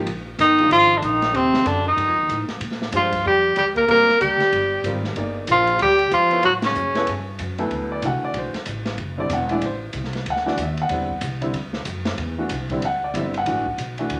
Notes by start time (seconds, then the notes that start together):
0.07 A#1, ride
0.39 G1 D#3 D#4, hi-hat pedal, ride
0.58 D#3 G#3 D4 F4, ride
0.70 G#1 F3 F4, ride
0.97 D3 D4
1.02 A#1 D#3 D#4, hi-hat pedal, ride
1.22 snare, ride
1.34 D#2 C3 C4, ride
1.54 snare
1.65 F#2 D3 D4, hi-hat pedal, ride
1.86 D#3 D#4
1.97 G2, ride
2.07 F2
2.19 D#2
2.29 A2, hi-hat pedal, ride
2.49 muted upright bass stroke, snare, ride
2.60 A#2, ride
2.71 snare
2.82 snare
2.92 G2 F3 G#3 D4 F4 G4 C5, hi-hat pedal, ride
3.12 kick, ride
3.25 F2 G3 G4
3.56 D2 G3 G4, hi-hat pedal, ride
3.76 A#3 A#4, kick, ride
3.88 A#1 G3 A#3 C4 F4 A#4, ride
4.08 muted upright bass stroke, snare
4.20 D2 G3 G4, hi-hat pedal, ride
4.40 muted upright bass stroke, snare, ride
4.52 G1, ride
4.84 G#1 G3 C4 F4 A#4, hi-hat pedal, ride
5.04 snare
5.16 G1 A#3 D#4 G#4 D5, ride
5.47 A#1 F3, hi-hat pedal, ride
5.51 F4
5.67 ride
5.79 D2 G3 G4, ride
5.99 ride
6.11 F2 F3 F4, hi-hat pedal, ride
6.31 B3 E4 A4 C#5, ride
6.43 A2 F#3 F#4, ride
6.62 C#3 C#4, snare, ride
6.75 F#2, hi-hat pedal
6.95 B3 E4 A4 C#5, snare, ride
7.07 G2, ride
7.39 F#2, hi-hat pedal, ride
7.58 D2 F#3 B3 E4 A4, ride
7.71 D2, ride
7.92 D5
8.02 C2 E3 A3 D4 F#4 F#5, hi-hat pedal, ride
8.22 D5, muted upright bass stroke
8.34 B1, ride
8.38 C5
8.54 muted upright bass stroke, snare, ride
8.66 A1, hi-hat pedal, ride
8.85 snare, ride
8.98 F#1, ride
9.18 D3 G3 C4 E4 D5
9.29 E1 F#5, hi-hat pedal, ride
9.49 E3 A3 D4 E4 D5, ride
9.62 A1 C5, ride
9.93 C2, hi-hat pedal, ride
10.04 snare
10.13 snare, ride
10.26 D2, ride
10.30 F#5
10.36 snare
10.46 E3 A3 D4 F#4 D5, snare
10.57 D#2, hi-hat pedal, ride
10.62 E5
10.77 ride
10.82 F#5
10.89 E2 D3 G3 C4 E4, ride
11.09 kick
11.21 C2, hi-hat pedal, ride
11.41 D3 G3 C4 E4, ride
11.54 D2, ride
11.73 snare
11.85 F#2, hi-hat pedal, ride
12.05 snare, ride
12.18 E2, ride
12.38 E3 A3 D4 F#4
12.49 C2, hi-hat pedal, ride
12.70 D3 G3 C4 E4, kick, ride
12.82 D2 F#5, ride
13.04 D5
13.14 G1 D3 G3 C4 E4, hi-hat pedal, ride
13.20 E5
13.34 F#5, ride
13.46 A1 E3 A3 D4 F#4, ride
13.66 kick
13.78 B1, hi-hat pedal, ride
13.98 E3 A3 D4 F#4, ride
14.10 D2, ride